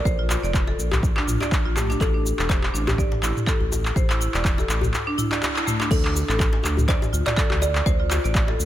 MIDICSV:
0, 0, Header, 1, 6, 480
1, 0, Start_track
1, 0, Key_signature, -1, "minor"
1, 0, Tempo, 487805
1, 57, Time_signature, 4, 2, 24, 8
1, 8514, End_track
2, 0, Start_track
2, 0, Title_t, "Kalimba"
2, 0, Program_c, 0, 108
2, 0, Note_on_c, 0, 74, 106
2, 1738, Note_on_c, 0, 67, 91
2, 1790, Note_off_c, 0, 74, 0
2, 1979, Note_on_c, 0, 69, 94
2, 1985, Note_off_c, 0, 67, 0
2, 2424, Note_off_c, 0, 69, 0
2, 2456, Note_on_c, 0, 72, 94
2, 2804, Note_off_c, 0, 72, 0
2, 2833, Note_on_c, 0, 67, 84
2, 5298, Note_off_c, 0, 67, 0
2, 5813, Note_on_c, 0, 69, 86
2, 6736, Note_off_c, 0, 69, 0
2, 6776, Note_on_c, 0, 72, 109
2, 7124, Note_off_c, 0, 72, 0
2, 7148, Note_on_c, 0, 74, 111
2, 7487, Note_off_c, 0, 74, 0
2, 7499, Note_on_c, 0, 74, 112
2, 7735, Note_on_c, 0, 72, 92
2, 7745, Note_off_c, 0, 74, 0
2, 8514, Note_off_c, 0, 72, 0
2, 8514, End_track
3, 0, Start_track
3, 0, Title_t, "Marimba"
3, 0, Program_c, 1, 12
3, 53, Note_on_c, 1, 72, 98
3, 182, Note_off_c, 1, 72, 0
3, 187, Note_on_c, 1, 65, 74
3, 282, Note_off_c, 1, 65, 0
3, 294, Note_on_c, 1, 65, 77
3, 416, Note_off_c, 1, 65, 0
3, 427, Note_on_c, 1, 74, 79
3, 530, Note_off_c, 1, 74, 0
3, 668, Note_on_c, 1, 69, 75
3, 726, Note_off_c, 1, 69, 0
3, 1147, Note_on_c, 1, 62, 98
3, 1245, Note_off_c, 1, 62, 0
3, 1254, Note_on_c, 1, 65, 73
3, 1328, Note_off_c, 1, 65, 0
3, 1387, Note_on_c, 1, 74, 77
3, 1490, Note_off_c, 1, 74, 0
3, 1629, Note_on_c, 1, 65, 76
3, 1731, Note_off_c, 1, 65, 0
3, 1734, Note_on_c, 1, 57, 74
3, 1808, Note_off_c, 1, 57, 0
3, 1867, Note_on_c, 1, 62, 76
3, 1965, Note_off_c, 1, 62, 0
3, 2109, Note_on_c, 1, 62, 71
3, 2205, Note_off_c, 1, 62, 0
3, 2349, Note_on_c, 1, 69, 77
3, 2446, Note_off_c, 1, 69, 0
3, 2695, Note_on_c, 1, 62, 77
3, 2817, Note_off_c, 1, 62, 0
3, 2936, Note_on_c, 1, 74, 95
3, 3063, Note_off_c, 1, 74, 0
3, 3178, Note_on_c, 1, 64, 81
3, 3298, Note_off_c, 1, 64, 0
3, 3418, Note_on_c, 1, 69, 105
3, 3538, Note_off_c, 1, 69, 0
3, 3897, Note_on_c, 1, 72, 100
3, 4024, Note_off_c, 1, 72, 0
3, 4032, Note_on_c, 1, 64, 76
3, 4127, Note_off_c, 1, 64, 0
3, 4140, Note_on_c, 1, 64, 76
3, 4259, Note_off_c, 1, 64, 0
3, 4273, Note_on_c, 1, 74, 78
3, 4373, Note_off_c, 1, 74, 0
3, 4512, Note_on_c, 1, 69, 81
3, 4569, Note_off_c, 1, 69, 0
3, 4990, Note_on_c, 1, 62, 104
3, 5086, Note_off_c, 1, 62, 0
3, 5097, Note_on_c, 1, 64, 77
3, 5169, Note_off_c, 1, 64, 0
3, 5229, Note_on_c, 1, 74, 71
3, 5331, Note_off_c, 1, 74, 0
3, 5468, Note_on_c, 1, 64, 80
3, 5570, Note_off_c, 1, 64, 0
3, 5575, Note_on_c, 1, 57, 76
3, 5648, Note_off_c, 1, 57, 0
3, 5708, Note_on_c, 1, 62, 77
3, 5805, Note_off_c, 1, 62, 0
3, 5948, Note_on_c, 1, 62, 76
3, 6045, Note_off_c, 1, 62, 0
3, 6189, Note_on_c, 1, 69, 80
3, 6286, Note_off_c, 1, 69, 0
3, 6534, Note_on_c, 1, 62, 79
3, 6656, Note_off_c, 1, 62, 0
3, 6774, Note_on_c, 1, 74, 101
3, 6902, Note_off_c, 1, 74, 0
3, 7014, Note_on_c, 1, 65, 80
3, 7136, Note_off_c, 1, 65, 0
3, 7255, Note_on_c, 1, 69, 107
3, 7376, Note_off_c, 1, 69, 0
3, 7735, Note_on_c, 1, 72, 98
3, 7863, Note_off_c, 1, 72, 0
3, 7869, Note_on_c, 1, 65, 76
3, 7966, Note_off_c, 1, 65, 0
3, 7976, Note_on_c, 1, 65, 79
3, 8097, Note_off_c, 1, 65, 0
3, 8110, Note_on_c, 1, 74, 77
3, 8211, Note_off_c, 1, 74, 0
3, 8350, Note_on_c, 1, 69, 78
3, 8408, Note_off_c, 1, 69, 0
3, 8514, End_track
4, 0, Start_track
4, 0, Title_t, "Analog synth bass"
4, 0, Program_c, 2, 38
4, 51, Note_on_c, 2, 34, 106
4, 369, Note_off_c, 2, 34, 0
4, 423, Note_on_c, 2, 29, 95
4, 726, Note_off_c, 2, 29, 0
4, 773, Note_on_c, 2, 34, 90
4, 1090, Note_off_c, 2, 34, 0
4, 1253, Note_on_c, 2, 34, 90
4, 1352, Note_off_c, 2, 34, 0
4, 1626, Note_on_c, 2, 34, 78
4, 1928, Note_off_c, 2, 34, 0
4, 1974, Note_on_c, 2, 33, 104
4, 2290, Note_off_c, 2, 33, 0
4, 2349, Note_on_c, 2, 28, 92
4, 2649, Note_off_c, 2, 28, 0
4, 2693, Note_on_c, 2, 33, 94
4, 3010, Note_off_c, 2, 33, 0
4, 3172, Note_on_c, 2, 33, 95
4, 3272, Note_off_c, 2, 33, 0
4, 3546, Note_on_c, 2, 33, 82
4, 3848, Note_off_c, 2, 33, 0
4, 3895, Note_on_c, 2, 33, 103
4, 4211, Note_off_c, 2, 33, 0
4, 4267, Note_on_c, 2, 28, 94
4, 4568, Note_off_c, 2, 28, 0
4, 4612, Note_on_c, 2, 33, 95
4, 4854, Note_off_c, 2, 33, 0
4, 5814, Note_on_c, 2, 38, 106
4, 6130, Note_off_c, 2, 38, 0
4, 6187, Note_on_c, 2, 33, 100
4, 6488, Note_off_c, 2, 33, 0
4, 6534, Note_on_c, 2, 38, 92
4, 6851, Note_off_c, 2, 38, 0
4, 7014, Note_on_c, 2, 38, 91
4, 7112, Note_off_c, 2, 38, 0
4, 7388, Note_on_c, 2, 38, 85
4, 7689, Note_off_c, 2, 38, 0
4, 7735, Note_on_c, 2, 38, 102
4, 8051, Note_off_c, 2, 38, 0
4, 8113, Note_on_c, 2, 33, 98
4, 8411, Note_off_c, 2, 33, 0
4, 8455, Note_on_c, 2, 38, 93
4, 8514, Note_off_c, 2, 38, 0
4, 8514, End_track
5, 0, Start_track
5, 0, Title_t, "Djembe"
5, 49, Note_on_c, 9, 63, 67
5, 148, Note_off_c, 9, 63, 0
5, 293, Note_on_c, 9, 63, 89
5, 392, Note_off_c, 9, 63, 0
5, 536, Note_on_c, 9, 63, 63
5, 634, Note_off_c, 9, 63, 0
5, 664, Note_on_c, 9, 62, 75
5, 762, Note_off_c, 9, 62, 0
5, 898, Note_on_c, 9, 63, 62
5, 901, Note_on_c, 9, 64, 99
5, 996, Note_off_c, 9, 63, 0
5, 999, Note_off_c, 9, 64, 0
5, 1144, Note_on_c, 9, 63, 93
5, 1242, Note_off_c, 9, 63, 0
5, 1383, Note_on_c, 9, 62, 79
5, 1383, Note_on_c, 9, 63, 68
5, 1482, Note_off_c, 9, 62, 0
5, 1482, Note_off_c, 9, 63, 0
5, 1735, Note_on_c, 9, 63, 66
5, 1833, Note_off_c, 9, 63, 0
5, 1868, Note_on_c, 9, 62, 76
5, 1967, Note_off_c, 9, 62, 0
5, 1980, Note_on_c, 9, 63, 81
5, 2079, Note_off_c, 9, 63, 0
5, 2218, Note_on_c, 9, 63, 69
5, 2317, Note_off_c, 9, 63, 0
5, 2581, Note_on_c, 9, 63, 60
5, 2680, Note_off_c, 9, 63, 0
5, 2826, Note_on_c, 9, 63, 87
5, 2830, Note_on_c, 9, 64, 93
5, 2925, Note_off_c, 9, 63, 0
5, 2928, Note_off_c, 9, 64, 0
5, 3067, Note_on_c, 9, 62, 83
5, 3068, Note_on_c, 9, 63, 60
5, 3166, Note_off_c, 9, 62, 0
5, 3167, Note_off_c, 9, 63, 0
5, 3421, Note_on_c, 9, 63, 63
5, 3519, Note_off_c, 9, 63, 0
5, 3547, Note_on_c, 9, 64, 83
5, 3645, Note_off_c, 9, 64, 0
5, 3660, Note_on_c, 9, 63, 89
5, 3663, Note_on_c, 9, 62, 76
5, 3759, Note_off_c, 9, 63, 0
5, 3762, Note_off_c, 9, 62, 0
5, 3894, Note_on_c, 9, 63, 66
5, 3992, Note_off_c, 9, 63, 0
5, 4268, Note_on_c, 9, 63, 58
5, 4367, Note_off_c, 9, 63, 0
5, 4508, Note_on_c, 9, 62, 82
5, 4510, Note_on_c, 9, 63, 92
5, 4606, Note_off_c, 9, 62, 0
5, 4609, Note_off_c, 9, 63, 0
5, 4737, Note_on_c, 9, 64, 91
5, 4739, Note_on_c, 9, 63, 68
5, 4835, Note_off_c, 9, 64, 0
5, 4837, Note_off_c, 9, 63, 0
5, 5092, Note_on_c, 9, 63, 63
5, 5191, Note_off_c, 9, 63, 0
5, 5228, Note_on_c, 9, 62, 84
5, 5326, Note_off_c, 9, 62, 0
5, 5338, Note_on_c, 9, 63, 89
5, 5437, Note_off_c, 9, 63, 0
5, 5582, Note_on_c, 9, 63, 62
5, 5681, Note_off_c, 9, 63, 0
5, 5704, Note_on_c, 9, 62, 79
5, 5803, Note_off_c, 9, 62, 0
5, 6054, Note_on_c, 9, 63, 64
5, 6153, Note_off_c, 9, 63, 0
5, 6284, Note_on_c, 9, 63, 91
5, 6382, Note_off_c, 9, 63, 0
5, 6422, Note_on_c, 9, 62, 97
5, 6521, Note_off_c, 9, 62, 0
5, 6523, Note_on_c, 9, 63, 71
5, 6621, Note_off_c, 9, 63, 0
5, 6664, Note_on_c, 9, 64, 101
5, 6762, Note_off_c, 9, 64, 0
5, 6907, Note_on_c, 9, 63, 73
5, 6910, Note_on_c, 9, 62, 94
5, 7005, Note_off_c, 9, 63, 0
5, 7008, Note_off_c, 9, 62, 0
5, 7146, Note_on_c, 9, 63, 94
5, 7244, Note_off_c, 9, 63, 0
5, 7380, Note_on_c, 9, 64, 88
5, 7393, Note_on_c, 9, 63, 60
5, 7479, Note_off_c, 9, 64, 0
5, 7492, Note_off_c, 9, 63, 0
5, 7494, Note_on_c, 9, 62, 87
5, 7593, Note_off_c, 9, 62, 0
5, 7732, Note_on_c, 9, 63, 66
5, 7830, Note_off_c, 9, 63, 0
5, 7986, Note_on_c, 9, 63, 88
5, 8085, Note_off_c, 9, 63, 0
5, 8215, Note_on_c, 9, 63, 72
5, 8314, Note_off_c, 9, 63, 0
5, 8345, Note_on_c, 9, 62, 91
5, 8443, Note_off_c, 9, 62, 0
5, 8514, End_track
6, 0, Start_track
6, 0, Title_t, "Drums"
6, 53, Note_on_c, 9, 36, 105
6, 62, Note_on_c, 9, 69, 48
6, 151, Note_off_c, 9, 36, 0
6, 160, Note_off_c, 9, 69, 0
6, 295, Note_on_c, 9, 39, 92
6, 302, Note_on_c, 9, 69, 90
6, 393, Note_off_c, 9, 39, 0
6, 400, Note_off_c, 9, 69, 0
6, 436, Note_on_c, 9, 69, 34
6, 533, Note_on_c, 9, 36, 98
6, 535, Note_off_c, 9, 69, 0
6, 535, Note_on_c, 9, 39, 99
6, 542, Note_on_c, 9, 69, 52
6, 632, Note_off_c, 9, 36, 0
6, 634, Note_off_c, 9, 39, 0
6, 641, Note_off_c, 9, 69, 0
6, 782, Note_on_c, 9, 69, 79
6, 881, Note_off_c, 9, 69, 0
6, 910, Note_on_c, 9, 39, 86
6, 910, Note_on_c, 9, 47, 93
6, 917, Note_on_c, 9, 69, 39
6, 1009, Note_off_c, 9, 39, 0
6, 1009, Note_off_c, 9, 47, 0
6, 1013, Note_on_c, 9, 36, 115
6, 1015, Note_off_c, 9, 69, 0
6, 1024, Note_on_c, 9, 69, 47
6, 1112, Note_off_c, 9, 36, 0
6, 1122, Note_off_c, 9, 69, 0
6, 1149, Note_on_c, 9, 39, 84
6, 1247, Note_off_c, 9, 39, 0
6, 1256, Note_on_c, 9, 47, 96
6, 1262, Note_on_c, 9, 69, 91
6, 1354, Note_off_c, 9, 47, 0
6, 1361, Note_off_c, 9, 69, 0
6, 1392, Note_on_c, 9, 39, 74
6, 1399, Note_on_c, 9, 69, 39
6, 1490, Note_off_c, 9, 39, 0
6, 1494, Note_on_c, 9, 36, 107
6, 1497, Note_off_c, 9, 69, 0
6, 1499, Note_on_c, 9, 39, 99
6, 1505, Note_on_c, 9, 69, 51
6, 1592, Note_off_c, 9, 36, 0
6, 1597, Note_off_c, 9, 39, 0
6, 1604, Note_off_c, 9, 69, 0
6, 1738, Note_on_c, 9, 39, 88
6, 1738, Note_on_c, 9, 47, 98
6, 1745, Note_on_c, 9, 69, 89
6, 1837, Note_off_c, 9, 39, 0
6, 1837, Note_off_c, 9, 47, 0
6, 1844, Note_off_c, 9, 69, 0
6, 1881, Note_on_c, 9, 69, 39
6, 1975, Note_on_c, 9, 36, 106
6, 1978, Note_on_c, 9, 39, 72
6, 1980, Note_off_c, 9, 69, 0
6, 1985, Note_on_c, 9, 69, 49
6, 2073, Note_off_c, 9, 36, 0
6, 2077, Note_off_c, 9, 39, 0
6, 2084, Note_off_c, 9, 69, 0
6, 2226, Note_on_c, 9, 69, 87
6, 2325, Note_off_c, 9, 69, 0
6, 2353, Note_on_c, 9, 39, 83
6, 2360, Note_on_c, 9, 69, 35
6, 2451, Note_off_c, 9, 39, 0
6, 2455, Note_on_c, 9, 36, 100
6, 2458, Note_off_c, 9, 69, 0
6, 2460, Note_on_c, 9, 39, 100
6, 2467, Note_on_c, 9, 69, 49
6, 2553, Note_off_c, 9, 36, 0
6, 2558, Note_off_c, 9, 39, 0
6, 2565, Note_off_c, 9, 69, 0
6, 2593, Note_on_c, 9, 39, 86
6, 2691, Note_off_c, 9, 39, 0
6, 2707, Note_on_c, 9, 69, 79
6, 2806, Note_off_c, 9, 69, 0
6, 2836, Note_on_c, 9, 39, 82
6, 2836, Note_on_c, 9, 47, 100
6, 2843, Note_on_c, 9, 69, 38
6, 2934, Note_off_c, 9, 39, 0
6, 2934, Note_off_c, 9, 47, 0
6, 2935, Note_on_c, 9, 36, 108
6, 2941, Note_off_c, 9, 69, 0
6, 2946, Note_on_c, 9, 69, 49
6, 3034, Note_off_c, 9, 36, 0
6, 3045, Note_off_c, 9, 69, 0
6, 3072, Note_on_c, 9, 47, 81
6, 3171, Note_off_c, 9, 47, 0
6, 3177, Note_on_c, 9, 39, 88
6, 3184, Note_on_c, 9, 69, 91
6, 3275, Note_off_c, 9, 39, 0
6, 3282, Note_off_c, 9, 69, 0
6, 3314, Note_on_c, 9, 47, 99
6, 3321, Note_on_c, 9, 69, 38
6, 3412, Note_off_c, 9, 47, 0
6, 3416, Note_on_c, 9, 36, 98
6, 3419, Note_off_c, 9, 69, 0
6, 3419, Note_on_c, 9, 39, 102
6, 3426, Note_on_c, 9, 69, 48
6, 3514, Note_off_c, 9, 36, 0
6, 3517, Note_off_c, 9, 39, 0
6, 3524, Note_off_c, 9, 69, 0
6, 3665, Note_on_c, 9, 69, 84
6, 3763, Note_off_c, 9, 69, 0
6, 3793, Note_on_c, 9, 39, 87
6, 3799, Note_on_c, 9, 69, 38
6, 3891, Note_off_c, 9, 39, 0
6, 3896, Note_on_c, 9, 36, 113
6, 3898, Note_off_c, 9, 69, 0
6, 3905, Note_on_c, 9, 69, 51
6, 3995, Note_off_c, 9, 36, 0
6, 4003, Note_off_c, 9, 69, 0
6, 4033, Note_on_c, 9, 39, 93
6, 4040, Note_on_c, 9, 69, 36
6, 4132, Note_off_c, 9, 39, 0
6, 4139, Note_off_c, 9, 69, 0
6, 4145, Note_on_c, 9, 69, 86
6, 4244, Note_off_c, 9, 69, 0
6, 4273, Note_on_c, 9, 39, 77
6, 4279, Note_on_c, 9, 69, 37
6, 4371, Note_off_c, 9, 39, 0
6, 4376, Note_on_c, 9, 36, 102
6, 4378, Note_off_c, 9, 69, 0
6, 4378, Note_on_c, 9, 39, 108
6, 4385, Note_on_c, 9, 69, 50
6, 4475, Note_off_c, 9, 36, 0
6, 4476, Note_off_c, 9, 39, 0
6, 4483, Note_off_c, 9, 69, 0
6, 4520, Note_on_c, 9, 69, 34
6, 4619, Note_off_c, 9, 69, 0
6, 4619, Note_on_c, 9, 39, 88
6, 4626, Note_on_c, 9, 69, 84
6, 4717, Note_off_c, 9, 39, 0
6, 4724, Note_off_c, 9, 69, 0
6, 4754, Note_on_c, 9, 47, 94
6, 4761, Note_on_c, 9, 69, 37
6, 4852, Note_off_c, 9, 47, 0
6, 4859, Note_off_c, 9, 69, 0
6, 4859, Note_on_c, 9, 39, 76
6, 4865, Note_on_c, 9, 69, 48
6, 4957, Note_off_c, 9, 39, 0
6, 4964, Note_off_c, 9, 69, 0
6, 5098, Note_on_c, 9, 47, 97
6, 5105, Note_on_c, 9, 69, 90
6, 5197, Note_off_c, 9, 47, 0
6, 5203, Note_off_c, 9, 69, 0
6, 5233, Note_on_c, 9, 39, 97
6, 5240, Note_on_c, 9, 69, 39
6, 5331, Note_off_c, 9, 39, 0
6, 5338, Note_off_c, 9, 69, 0
6, 5340, Note_on_c, 9, 39, 105
6, 5347, Note_on_c, 9, 69, 54
6, 5439, Note_off_c, 9, 39, 0
6, 5446, Note_off_c, 9, 69, 0
6, 5475, Note_on_c, 9, 39, 94
6, 5482, Note_on_c, 9, 69, 36
6, 5573, Note_off_c, 9, 39, 0
6, 5580, Note_off_c, 9, 69, 0
6, 5580, Note_on_c, 9, 47, 98
6, 5587, Note_on_c, 9, 69, 86
6, 5678, Note_off_c, 9, 47, 0
6, 5685, Note_off_c, 9, 69, 0
6, 5714, Note_on_c, 9, 39, 81
6, 5721, Note_on_c, 9, 69, 37
6, 5812, Note_off_c, 9, 39, 0
6, 5815, Note_on_c, 9, 36, 118
6, 5819, Note_off_c, 9, 69, 0
6, 5819, Note_on_c, 9, 49, 106
6, 5826, Note_on_c, 9, 69, 49
6, 5913, Note_off_c, 9, 36, 0
6, 5918, Note_off_c, 9, 49, 0
6, 5925, Note_off_c, 9, 69, 0
6, 5952, Note_on_c, 9, 39, 94
6, 6051, Note_off_c, 9, 39, 0
6, 6065, Note_on_c, 9, 69, 94
6, 6163, Note_off_c, 9, 69, 0
6, 6193, Note_on_c, 9, 39, 77
6, 6200, Note_on_c, 9, 69, 38
6, 6292, Note_off_c, 9, 39, 0
6, 6295, Note_on_c, 9, 36, 102
6, 6298, Note_off_c, 9, 69, 0
6, 6299, Note_on_c, 9, 39, 108
6, 6306, Note_on_c, 9, 69, 55
6, 6393, Note_off_c, 9, 36, 0
6, 6398, Note_off_c, 9, 39, 0
6, 6405, Note_off_c, 9, 69, 0
6, 6540, Note_on_c, 9, 39, 93
6, 6547, Note_on_c, 9, 69, 86
6, 6638, Note_off_c, 9, 39, 0
6, 6645, Note_off_c, 9, 69, 0
6, 6673, Note_on_c, 9, 47, 96
6, 6680, Note_on_c, 9, 69, 41
6, 6771, Note_off_c, 9, 47, 0
6, 6775, Note_on_c, 9, 36, 116
6, 6778, Note_off_c, 9, 69, 0
6, 6778, Note_on_c, 9, 39, 81
6, 6785, Note_on_c, 9, 69, 51
6, 6873, Note_off_c, 9, 36, 0
6, 6877, Note_off_c, 9, 39, 0
6, 6884, Note_off_c, 9, 69, 0
6, 6911, Note_on_c, 9, 47, 77
6, 6918, Note_on_c, 9, 69, 37
6, 7009, Note_off_c, 9, 47, 0
6, 7016, Note_off_c, 9, 69, 0
6, 7023, Note_on_c, 9, 69, 98
6, 7122, Note_off_c, 9, 69, 0
6, 7152, Note_on_c, 9, 39, 99
6, 7152, Note_on_c, 9, 47, 96
6, 7159, Note_on_c, 9, 69, 41
6, 7251, Note_off_c, 9, 39, 0
6, 7251, Note_off_c, 9, 47, 0
6, 7255, Note_on_c, 9, 36, 113
6, 7257, Note_off_c, 9, 69, 0
6, 7257, Note_on_c, 9, 39, 115
6, 7263, Note_on_c, 9, 69, 56
6, 7354, Note_off_c, 9, 36, 0
6, 7355, Note_off_c, 9, 39, 0
6, 7362, Note_off_c, 9, 69, 0
6, 7389, Note_on_c, 9, 39, 100
6, 7487, Note_off_c, 9, 39, 0
6, 7505, Note_on_c, 9, 69, 90
6, 7603, Note_off_c, 9, 69, 0
6, 7629, Note_on_c, 9, 39, 86
6, 7636, Note_on_c, 9, 69, 40
6, 7727, Note_off_c, 9, 39, 0
6, 7734, Note_off_c, 9, 69, 0
6, 7736, Note_on_c, 9, 36, 115
6, 7741, Note_on_c, 9, 69, 55
6, 7834, Note_off_c, 9, 36, 0
6, 7839, Note_off_c, 9, 69, 0
6, 7976, Note_on_c, 9, 39, 96
6, 7983, Note_on_c, 9, 69, 94
6, 8075, Note_off_c, 9, 39, 0
6, 8081, Note_off_c, 9, 69, 0
6, 8116, Note_on_c, 9, 69, 38
6, 8214, Note_off_c, 9, 69, 0
6, 8216, Note_on_c, 9, 36, 115
6, 8217, Note_on_c, 9, 39, 107
6, 8224, Note_on_c, 9, 69, 53
6, 8314, Note_off_c, 9, 36, 0
6, 8315, Note_off_c, 9, 39, 0
6, 8322, Note_off_c, 9, 69, 0
6, 8464, Note_on_c, 9, 69, 89
6, 8514, Note_off_c, 9, 69, 0
6, 8514, End_track
0, 0, End_of_file